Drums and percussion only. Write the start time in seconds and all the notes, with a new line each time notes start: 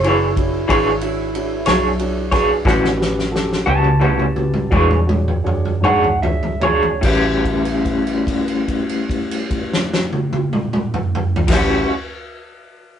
0.04 ride
0.37 kick, ride
0.69 kick, ride
1.01 ride
1.35 ride
1.66 snare, ride
1.99 ride
2.32 kick, snare, ride
2.65 kick, snare
2.85 snare
3.02 snare
3.19 snare
3.36 snare
3.53 snare
3.67 high tom
3.84 high tom
4.01 high tom
4.19 high tom
4.36 high tom
4.54 mid tom
4.72 kick, mid tom
4.91 mid tom
5.09 mid tom
5.28 mid tom
5.47 mid tom
5.65 mid tom
5.85 mid tom
6.04 floor tom
6.23 floor tom
6.43 floor tom
6.62 floor tom
6.83 floor tom
7.03 kick, crash
7.44 kick, crash
7.65 crash
7.85 kick, crash
8.07 crash
8.27 kick, crash
8.48 crash
8.68 kick, crash
8.89 crash
9.09 kick, crash
9.31 crash
9.51 kick, crash
9.74 snare
9.93 snare
10.13 high tom
10.33 high tom
10.53 mid tom
10.73 mid tom
10.94 mid tom
11.15 mid tom
11.36 floor tom
11.48 kick, snare, crash